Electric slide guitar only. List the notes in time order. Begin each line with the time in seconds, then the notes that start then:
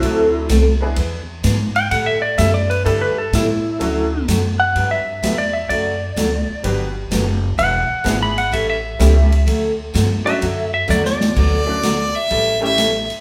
Already playing: E4
1.76 G5
1.91 F#5
2.06 E5
2.22 D5
2.38 E5
2.54 D5
2.70 B4
2.86 A4
3.01 B4
3.18 A4
3.35 E4
4.60 F#5
4.91 E5
5.38 D5
5.53 E5
5.69 D5
7.59 F#5
8.23 B5
8.38 F#5
8.53 E5
8.70 E5
10.26 E5
10.74 E5
10.90 D5
11.06 D5